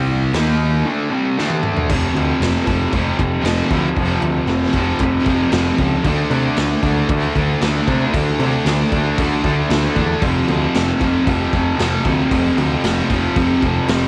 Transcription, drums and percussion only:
0.33 snare, open hi-hat
1.39 snare
1.50 high tom
1.63 mid tom
1.77 floor tom
1.90 kick, crash
2.16 crash
2.42 snare, crash
2.67 kick, crash
2.92 kick, crash
3.19 kick, crash
3.45 snare, crash
3.70 kick, crash
3.96 kick, crash
4.22 crash
4.47 snare, crash
4.73 kick, crash
4.99 kick, crash
5.26 kick, crash
5.52 snare, crash
5.78 kick, crash
6.04 kick, crash
6.31 crash
6.57 snare, crash
6.83 kick, crash
7.09 kick, crash
7.35 kick, crash
7.61 snare, crash
7.87 kick, crash
8.14 kick, crash
8.40 crash
8.66 snare, crash
8.92 kick, crash
9.18 kick, crash
9.44 kick, crash
9.70 snare, crash
9.96 kick, crash
10.22 kick, crash
10.48 crash
10.74 snare, crash
11.01 kick, crash
11.27 kick, crash
11.53 kick, crash
11.79 snare, crash
12.05 kick, crash
12.31 kick, crash
12.58 crash
12.84 snare, crash
13.10 kick, crash
13.36 kick, crash
13.62 kick, crash
13.88 snare, crash

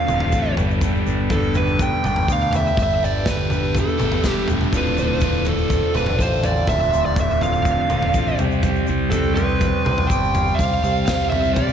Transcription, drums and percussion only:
0.08 mid tom, shaker
0.20 floor tom
0.32 kick, shaker
0.45 shaker
0.57 floor tom, shaker
0.70 shaker
0.81 kick, floor tom, shaker
0.96 shaker
1.07 shaker
1.30 kick, floor tom, shaker
1.43 shaker
1.54 floor tom, shaker
1.67 shaker
1.79 kick, floor tom, shaker
2.04 mid tom, shaker
2.16 floor tom
2.28 kick, shaker
2.42 shaker
2.53 floor tom, shaker
2.66 shaker
2.77 kick, floor tom, shaker
2.91 shaker
3.04 shaker
3.26 kick, snare, floor tom, shaker
3.40 shaker
3.50 floor tom, mid tom, shaker
3.64 shaker
3.75 kick, floor tom, mid tom, shaker
3.89 shaker
4.00 mid tom, shaker
4.12 floor tom, shaker
4.24 kick, snare, shaker
4.37 shaker
4.48 floor tom, shaker
4.61 mid tom, shaker
4.73 kick, floor tom, shaker
4.86 shaker
4.97 shaker
5.21 kick, floor tom, shaker
5.33 shaker
5.45 floor tom, shaker
5.58 shaker
5.70 kick, floor tom, shaker
5.95 mid tom, shaker
6.06 floor tom
6.19 kick, shaker
6.33 shaker
6.44 floor tom, shaker
6.57 shaker
6.67 kick, floor tom, shaker
6.83 shaker
6.93 shaker
7.16 kick, floor tom, shaker
7.30 shaker
7.41 floor tom, shaker
7.54 shaker
7.65 kick, floor tom, shaker
7.90 mid tom, shaker
8.02 floor tom
8.14 kick, shaker
8.27 shaker
8.38 floor tom, shaker
8.51 shaker
8.63 kick, floor tom, shaker
8.76 shaker
8.87 shaker
9.12 kick, floor tom, shaker
9.23 shaker
9.36 floor tom, shaker
9.49 shaker
9.61 kick, floor tom, shaker
9.86 mid tom
9.98 floor tom
10.10 kick, shaker
10.24 shaker
10.35 floor tom, shaker
10.47 shaker
10.59 kick, floor tom, shaker
10.72 shaker
10.84 shaker
10.96 shaker
11.07 kick, snare, floor tom, shaker
11.20 shaker
11.32 floor tom, mid tom
11.44 shaker
11.56 kick, floor tom, mid tom, shaker
11.68 shaker

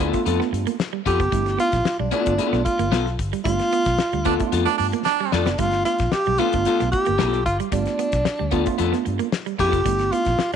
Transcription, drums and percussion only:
0.00 kick
0.13 kick, closed hi-hat
0.26 closed hi-hat
0.41 snare
0.54 closed hi-hat
0.67 closed hi-hat
0.80 snare
1.06 kick, closed hi-hat
1.20 kick, closed hi-hat
1.32 kick, closed hi-hat
1.46 snare, closed hi-hat
1.60 closed hi-hat
1.72 kick, snare, closed hi-hat
1.85 snare
2.11 closed hi-hat
2.26 kick, closed hi-hat
2.39 closed hi-hat
2.53 snare
2.66 kick, closed hi-hat
2.79 closed hi-hat
2.93 snare
3.06 snare
3.19 kick, closed hi-hat
3.33 closed hi-hat
3.45 kick, closed hi-hat
3.59 snare, closed hi-hat
3.73 closed hi-hat
3.85 kick, snare, closed hi-hat
3.99 snare
4.12 closed hi-hat
4.25 kick, closed hi-hat
4.40 kick, closed hi-hat
4.52 closed hi-hat
4.67 snare, closed hi-hat
4.79 open hi-hat
4.93 closed hi-hat
5.06 snare
5.32 snare
5.46 snare
5.58 kick, closed hi-hat
5.71 snare, closed hi-hat
5.85 closed hi-hat
5.98 kick, snare, closed hi-hat
6.12 snare
6.26 closed hi-hat
6.38 closed hi-hat
6.52 kick, closed hi-hat
6.65 closed hi-hat
6.80 snare, closed hi-hat
6.93 kick, closed hi-hat
7.06 closed hi-hat
7.19 snare
7.33 snare, closed hi-hat
7.46 kick, closed hi-hat
7.60 closed hi-hat
7.72 kick, closed hi-hat
7.85 snare, closed hi-hat
7.99 closed hi-hat
8.12 kick, snare, closed hi-hat
8.25 snare
8.51 kick, closed hi-hat
8.66 kick, closed hi-hat
8.78 closed hi-hat
8.93 snare, closed hi-hat
9.06 closed hi-hat
9.19 closed hi-hat
9.32 snare
9.46 closed hi-hat
9.59 kick, closed hi-hat
9.73 kick, closed hi-hat
9.86 kick, closed hi-hat
9.99 snare, closed hi-hat
10.12 closed hi-hat
10.25 kick, snare, closed hi-hat
10.39 snare
10.53 closed hi-hat

